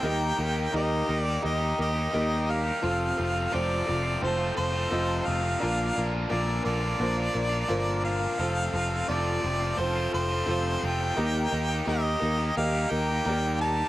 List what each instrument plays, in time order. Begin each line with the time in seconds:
Already playing: harmonica G5
0.02 picked electric bass D#2, overdriven electric guitar D#3 A#3 D#4 G4, steel-string acoustic guitar D#3 G3 A#3 D#4 A#4, upright piano G4 A#4 D#5
0.37 picked electric bass D#2, overdriven electric guitar D#3 A#3 D#4 G4, steel-string acoustic guitar A#3 D#4 A#4
0.54 overdriven electric guitar D#4 G4
0.58 overdriven electric guitar A#3
0.72 picked electric bass D#2, steel-string acoustic guitar D#3 G3 A#3 D#4 A#4, overdriven electric guitar D#3 A#3 D#4 G4, upright piano G4 A#4 D#5
0.76 harmonica D#5
1.06 picked electric bass D#2, overdriven electric guitar D#3 A#3 D#4 G4, steel-string acoustic guitar A#3 D#4 A#4
1.21 harmonica D5
1.25 overdriven electric guitar A#3 D#4 G4
1.41 picked electric bass D#2, steel-string acoustic guitar G3 A#3 D#4 A#4, upright piano G4 A#4 D#5, harmonica D#5
1.58 overdriven electric guitar A#3 D#4 G4
1.78 picked electric bass D#2, steel-string acoustic guitar A#3 D#4 A#4, harmonica D#5
1.93 overdriven electric guitar D#4 G4
1.97 overdriven electric guitar A#3
2.11 picked electric bass D#2, overdriven electric guitar D#3 A#3 D#4 G4, steel-string acoustic guitar D#3 G3 A#3 D#4 A#4, upright piano G4 A#4 D#5
2.46 overdriven electric guitar D#3 A#3 D#4 G4
2.51 harmonica F5
2.64 overdriven electric guitar A#3 D#4 G4
2.81 picked electric bass F1, overdriven electric guitar F2 C3 F3 A3 C4 F4, steel-string acoustic guitar F3 C4 F4 A4, upright piano F4 A4 C5
3.15 picked electric bass F1, overdriven electric guitar F3 A3 C4 F4, steel-string acoustic guitar C4 F4 A4
3.33 overdriven electric guitar F3 A3 C4 F4
3.50 overdriven electric guitar F2 C3 F3 A3 C4 F4, steel-string acoustic guitar F3 C4 F4 A4, upright piano F4 A4 C5
3.55 picked electric bass F1, harmonica D5
3.85 overdriven electric guitar F3 A3 C4 F4, steel-string acoustic guitar C4 F4 A4
3.89 picked electric bass F1
4.03 overdriven electric guitar F3 A3 C4 F4
4.20 picked electric bass F1, steel-string acoustic guitar F3 C4 F4 A4, upright piano F4 A4 C5, harmonica C5
4.37 overdriven electric guitar F3 A3 C4 F4
4.55 picked electric bass F1, steel-string acoustic guitar C4 F4 A4, harmonica C5
4.72 overdriven electric guitar F3 A3 C4 F4
4.90 picked electric bass F1, overdriven electric guitar F2 C3 F3 A3 C4 F4, steel-string acoustic guitar F3 C4 F4 A4, upright piano F4 A4 D#5
5.25 picked electric bass F1, overdriven electric guitar F3 A3 C4 F4, harmonica F5
5.41 overdriven electric guitar F3 A3 C4 F4
5.58 overdriven electric guitar A#2 D3 A#3 D4, steel-string acoustic guitar A#2 D3 F3 A#3 D4 A#4, upright piano F4 A#4 D5
5.62 picked electric bass A#1, overdriven electric guitar F4
5.94 picked electric bass A#1, overdriven electric guitar D3 A#3 D4, steel-string acoustic guitar F3 A#3 D4 A#4
5.98 overdriven electric guitar F4
6.11 overdriven electric guitar A#3 D4 F4
6.29 picked electric bass A#1, overdriven electric guitar A#2 D3 A#3 D4 F4, steel-string acoustic guitar A#2 D3 F3 A#3 D4 A#4, upright piano F4 A#4 D5, harmonica D5
6.64 picked electric bass A#1, overdriven electric guitar D3 A#3 D4 F4, steel-string acoustic guitar F3 A#3 D4 A#4, harmonica D5
6.80 overdriven electric guitar A#3 D4 F4
6.99 picked electric bass A#1, steel-string acoustic guitar F3 A#3 D4 A#4, upright piano F4 A#4 C5
7.17 overdriven electric guitar A#3 D4 F4
7.34 picked electric bass A#1, steel-string acoustic guitar F3 A#3 D4 A#4
7.50 overdriven electric guitar A#3 D4 F4
7.67 picked electric bass G1, overdriven electric guitar A#2 D3 A#3 D4 F4, steel-string acoustic guitar A#2 D3 F3 A#3 D4 A#4, upright piano F4 A#4 C5
8.02 overdriven electric guitar D3 A#3 D4 F4, harmonica F5
8.20 overdriven electric guitar A#3 D4 F4
8.38 picked electric bass F1, overdriven electric guitar F2 C3 F3 A3 C4 F4, steel-string acoustic guitar F3 C4 F4 A4, upright piano F4 A4 C5
8.73 picked electric bass F1, overdriven electric guitar F3 A3 C4, steel-string acoustic guitar C4 F4 A4
8.77 overdriven electric guitar F4
8.89 overdriven electric guitar F3 A3 C4 F4
9.08 picked electric bass F1, overdriven electric guitar F2 C3 F3 A3 C4, steel-string acoustic guitar F3 C4 F4 A4, upright piano F4 A4 D5, harmonica D5
9.12 overdriven electric guitar F4
9.41 picked electric bass F1, overdriven electric guitar F3 A3 C4, steel-string acoustic guitar C4 F4 A4
9.46 overdriven electric guitar F4
9.60 overdriven electric guitar F3 A3 C4 F4
9.76 picked electric bass F1, steel-string acoustic guitar F3 C4 F4 A4, upright piano F4 A4 C5, harmonica C5
9.95 overdriven electric guitar F3 A3 C4 F4
10.11 picked electric bass F1, steel-string acoustic guitar C4 F4 A4, harmonica C5
10.30 overdriven electric guitar A3 C4 F4
10.34 overdriven electric guitar F3
10.45 picked electric bass F1, overdriven electric guitar F2 C3 F3 A3 C4, steel-string acoustic guitar F3 C4 F4 A4, upright piano F4 A4 C5
10.50 overdriven electric guitar F4
10.80 picked electric bass F1, overdriven electric guitar F3 A3 C4 F4
10.86 harmonica G5
10.99 overdriven electric guitar F3 A3 C4 F4
11.16 picked electric bass D#2, overdriven electric guitar D#3 A#3 D#4 G4, steel-string acoustic guitar D#3 G3 A#3 D#4 A#4, upright piano G4 A#4 D#5
11.51 picked electric bass D#2, overdriven electric guitar D#3 A#3 D#4, steel-string acoustic guitar A#3 D#4 A#4
11.55 overdriven electric guitar G4
11.69 overdriven electric guitar A#3 D#4 G4
11.85 picked electric bass D#2, overdriven electric guitar D#3 A#3 D#4 G4, steel-string acoustic guitar D#3 G3 A#3 D#4 A#4, upright piano G4 A#4 D#5, harmonica D#5
12.20 picked electric bass D#2, overdriven electric guitar D#3 A#3 D#4, steel-string acoustic guitar A#3 D#4 A#4
12.24 overdriven electric guitar G4
12.37 overdriven electric guitar A#3 D#4 G4
12.55 picked electric bass D#2, steel-string acoustic guitar G3 A#3 D#4 A#4, upright piano G4 A#4 D#5, harmonica F5
12.72 overdriven electric guitar A#3 D#4 G4
12.90 picked electric bass D#2, steel-string acoustic guitar A#3 D#4 A#4, harmonica G5
13.08 overdriven electric guitar A#3 D#4 G4
13.25 picked electric bass D#2, overdriven electric guitar D#3 A#3 D#4 G4, steel-string acoustic guitar D#3 G3 A#3 D#4 A#4, upright piano A#4 D5
13.29 upright piano G4
13.60 overdriven electric guitar D#3 A#3 D#4 G4, harmonica A5
13.77 overdriven electric guitar A#3 D#4 G4